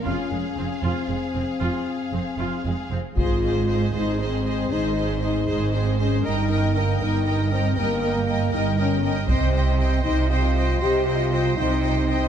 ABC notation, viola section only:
X:1
M:12/8
L:1/8
Q:3/8=78
K:Ab
V:1 name="Viola section"
F A, C F A, C F z C F A, C | A A A A A A A A A A A A | B B B B B B B B B B B B | c c c c c c c c c c c c |]